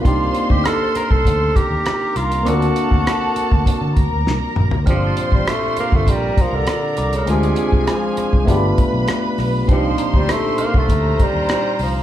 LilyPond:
<<
  \new Staff \with { instrumentName = "Glockenspiel" } { \time 4/4 \key g \minor \tempo 4 = 100 r4 f'''16 a'''2~ a'''8 r16 | d'''2~ d'''8 r4. | f'''16 a'''2~ a'''8 r8. d'''16 f'''16~ | f'''8. r2. r16 |
r8 bes''4 f'''16 a'''2~ a'''16 | }
  \new Staff \with { instrumentName = "Violin section" } { \time 4/4 \key g \minor <c'' c'''>2~ <c'' c'''>8 <bes' bes''>4. | <a' a''>2~ <a' a''>8 <bes' bes''>4. | <c'' c'''>2 <bes' bes''>2 | <aes' aes''>2 <b' b''>2 |
<c'' c'''>2 <c'' bes''>2 | }
  \new Staff \with { instrumentName = "Tine electric piano" } { \time 4/4 \key g \minor <bes c' d' ees' g'>1 | <bes c' d' f' fis' bes'>1 | <bes, c' d' f' g'>1 | <aes c' d' f' aes'>2 <a b d' f' g'>2 |
<bes, c' d' ees' g'>1 | }
  \new Staff \with { instrumentName = "Tenor saxophone" } { \time 4/4 \key g \minor f'8. g'16 a'8 bes'16 a'8. g'4 f'8 | fis'2. r4 | f8. g16 a8 bes16 a16 g8 f16 d4 cis16 | c4 f4 r2 |
f8. g16 a8 bes16 a8. g4 f8 | }
  \new Staff \with { instrumentName = "Fingered electric bass" } { \clef bass \time 4/4 \key g \minor c,8 r16 d,16 r8. c,16 d,8 r16 ees,16 r8 c,8 | d,8 r16 d,16 r8. d,16 r16 d16 d,16 d,16 c,16 r16 bes,,16 d,16 | g,,8 r16 a,,16 r8. g,,16 bes,,8 r16 c,16 r8 c,8 | d,8 r16 c,16 r8. c,16 g,,8 r16 b,,16 r8 b,,8 |
c,8 r16 d,16 r8. c,16 d,8 r16 ees,16 r8 c,8 | }
  \new DrumStaff \with { instrumentName = "Drums" } \drummode { \time 4/4 <hh bd>8 hh16 bd16 <hh ss>8 <hh ss>16 bd16 <hh bd>8 <hh bd>8 <hh ss>8 <hh ss>16 hh16 | hh16 hh16 hh16 bd16 <hh ss>8 hh16 bd16 <hh bd>8 <hh bd>8 sn8 toml16 tomfh16 | <hh bd>8 hh16 bd16 <hh ss>8 hh16 bd16 <hh bd>8 <hh bd>8 <hh ss>8 <hh ss>16 hh16 | hh16 hh16 hh16 bd16 <hh ss>8 <hh ss>16 bd16 <hh bd>8 <hh bd>8 <hh ss>8 <hho ss>8 |
<hh bd>8 hh16 bd16 <hh ss>8 hh16 bd16 <hh bd>8 <hh bd>8 <hh ss>8 hho8 | }
>>